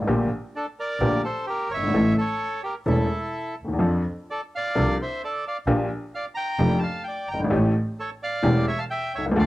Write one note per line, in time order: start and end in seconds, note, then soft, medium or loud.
0.02 0.08 A1 medium
0.07 0.27 A#1 medium
0.07 0.27 A#2 medium
0.07 0.28 D3 medium
0.07 0.27 A3 medium
0.07 0.27 A#3 medium
0.07 0.28 G4 medium
0.55 0.66 D4 medium
0.55 0.67 A4 medium
0.80 1.22 A#4 medium
0.80 1.22 D5 medium
1.00 1.20 A#1 medium
1.00 1.20 A#2 medium
1.00 1.20 D3 medium
1.00 1.20 A3 medium
1.00 1.20 A#3 medium
1.00 1.20 G4 medium
1.24 1.46 A4 medium
1.24 1.46 C5 medium
1.47 1.69 G4 medium
1.47 1.72 A#4 medium
1.68 1.92 G1 soft
1.68 2.14 C#5 medium
1.74 1.82 F#1 soft
1.74 2.16 E5 medium
1.83 1.88 G1 medium
1.88 1.94 G#1 medium
1.93 2.13 A1 medium
1.93 2.13 A2 medium
1.93 2.13 E3 medium
1.93 2.13 A3 medium
1.93 2.13 C#4 medium
1.93 2.14 A4 medium
2.18 2.61 A4 medium
2.18 2.62 C#5 medium
2.63 2.74 G4 medium
2.63 2.75 A#4 medium
2.86 3.06 E1 medium
2.86 3.06 E2 medium
2.86 3.06 E3 medium
2.86 3.06 A3 medium
2.86 3.06 C#4 medium
2.86 3.55 E4 medium
2.86 3.06 A4 medium
2.90 3.56 A4 medium
3.59 3.82 D#2 soft
3.64 3.70 D2 soft
3.64 3.75 D#2 medium
3.73 3.80 E2 medium
3.79 4.00 F2 medium
3.79 4.00 F3 medium
3.79 4.00 C4 medium
3.79 4.00 D4 medium
3.79 4.01 A4 medium
3.83 4.02 F2 medium
4.30 4.41 A4 medium
4.30 4.41 D5 medium
4.55 4.98 D5 medium
4.55 4.97 F5 loud
4.75 4.95 C2 medium
4.75 4.96 C2 medium
4.75 4.95 C3 medium
4.75 4.95 F3 medium
4.75 4.95 C4 medium
4.75 4.95 D4 medium
4.75 4.95 A4 medium
5.02 5.22 C5 medium
5.02 5.22 E5 medium
5.24 5.45 A4 medium
5.24 5.45 D5 medium
5.47 5.57 D5 medium
5.47 5.58 F5 medium
5.66 5.87 A#1 medium
5.66 5.87 A#2 medium
5.66 5.87 F3 medium
5.66 5.87 A#3 medium
5.66 5.87 D4 medium
5.66 5.87 G4 medium
6.15 6.26 D5 medium
6.15 6.25 F5 medium
6.35 6.80 G5 medium
6.35 6.79 A#5 loud
6.59 6.79 F1 medium
6.59 6.79 F1 loud
6.59 6.79 F2 medium
6.59 6.79 F3 medium
6.59 6.79 A#3 medium
6.59 6.79 D4 medium
6.59 6.79 G4 medium
6.79 7.02 A5 medium
6.83 7.05 F5 medium
7.04 7.29 G5 medium
7.08 7.29 D5 medium
7.28 7.51 G1 medium
7.28 7.41 G5 medium
7.28 7.39 A#5 medium
7.34 7.40 F#1 medium
7.40 7.46 G1 medium
7.44 7.51 G#1 medium
7.50 7.71 A1 medium
7.50 7.71 A2 medium
7.50 7.71 E3 medium
7.50 7.71 A3 medium
7.50 7.71 C#4 medium
7.50 7.71 G4 medium
7.99 8.10 A4 medium
7.99 8.10 C#5 medium
8.23 8.66 D5 medium
8.23 8.66 F5 medium
8.42 8.64 E1 medium
8.42 8.64 E1 loud
8.42 8.63 E2 medium
8.42 8.63 E3 medium
8.42 8.63 A3 medium
8.42 8.64 C#4 medium
8.42 8.64 G4 medium
8.67 8.79 C#5 medium
8.67 8.80 E5 medium
8.78 8.84 F5 medium
8.78 8.84 A5 medium
8.90 9.13 E5 medium
8.90 9.15 G5 loud
9.14 9.25 B1 medium
9.14 9.37 C2 medium
9.14 9.26 C#5 medium
9.14 9.26 E5 medium
9.26 9.32 C2 medium
9.32 9.38 C#2 medium
9.32 9.46 F3 medium
9.36 9.46 D2 medium
9.36 9.46 D3 loud
9.36 9.46 A3 medium
9.36 9.46 D4 medium
9.36 9.46 A4 medium
9.36 9.46 D5 medium
9.36 9.46 F5 loud